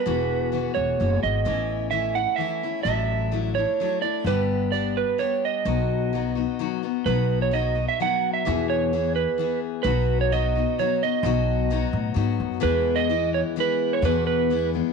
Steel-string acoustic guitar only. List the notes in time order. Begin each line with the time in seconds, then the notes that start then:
0.06 E2 B2 E3 G#3 B3 F#4
0.52 E3 G#3 B3 F#4
1.00 E3 G#3 B3 F#4
1.45 A2 E3 A3 C#4 E4
1.91 E3 A3 C#4 E4
2.15 A3 C#4 E4
2.38 E3 A3 C#4 E4
2.63 A3 C#4 E4
2.85 A2 F#3 A3 D4 E4
3.32 F#3 A3 D4 E4
3.57 A3 D4 E4
3.80 F#3 A3 D4 E4
4.02 A3 D4 E4
4.26 G2 D3 G3 B3 D4 G4
4.73 G3 B3 D4 G4
5.19 G3 B3 D4 G4
5.65 B2 F#3 B3 D#4 F#4
6.13 F#3 B3 D#4 F#4
6.35 B3 D#4 F#4
6.59 F#3 B3 D#4 F#4
6.83 B3 D#4 F#4
7.07 B2 F#3 B3 D#4 F#4
7.51 F#3 B3 D#4 F#4
7.75 B3 D#4 F#4
8.00 F#3 B3 D#4 F#4
8.45 E2 B2 E3 B3 E4 G#4
8.93 E3 B3 E4 G#4
9.38 E3 B3 E4 G#4
9.84 B2 F#3 B3 D#4 F#4
10.32 F#3 B3 D#4 F#4
10.55 B3 D#4 F#4
10.79 F#3 B3 D#4 F#4
11.03 B3 D#4 F#4
11.24 B2 F#3 B3 D#4 F#4
11.70 F#3 B3 D#4 F#4
12.14 F#3 B3 D#4 F#4
12.60 E2 B2 E3 G#3 B3 E4
13.09 E3 G#3 B3 E4
13.56 E3 G#3 B3 E4
14.03 E2 B2 E3 G#3 B3 E4
14.50 E3 G#3 B3 E4
14.73 E3 G#3 B3 E4